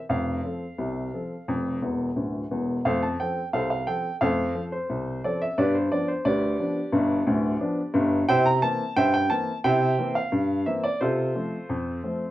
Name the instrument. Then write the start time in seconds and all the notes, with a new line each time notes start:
upright piano
0.09 F1 F2 F5
0.44 F3 C4 A4
0.78 C2 C3
1.13 F3 C4 A4
1.48 F1 F2
1.82 E1 E2
2.16 D1 D2
2.51 E1 E2
2.85 F2 A3 A4 C5 F5
3.03 A5
3.20 F3 C4 A4 G5
3.53 C2 A4 C5 F5
3.70 F5
3.87 F3 C4 A4 G5
4.21 F2 A3 A4 C5 F5
4.55 F3 C4 A4
4.72 C5
4.90 C2
5.24 F3 C4 A4 D5
5.41 E5
5.58 G2 B3 G4 B4 D5
5.75 C5
5.91 F3 B3 D4 D5
6.08 C5
6.25 D2 G4 B4 D5
6.59 F3 B3 D4
6.92 G1 G2
7.26 D1 D2
7.60 F3 B3 D4
7.94 G1 G2
8.29 C3 E4 C5 E5 G5
8.46 A#5
8.62 E3 A#3 C4 A5
8.97 G2 C5 E5 G5
9.14 G5
9.30 E3 A#3 C4 A5
9.64 C3 E4 C5 E5 G5
9.98 E3 A#3 C4
10.15 F5
10.32 G2
10.66 E3 A#3 C4 E5
10.84 D5
11.01 C3 F4 A4 C5
11.35 F3 A3 C4
11.70 F2
12.04 F3 A3 C4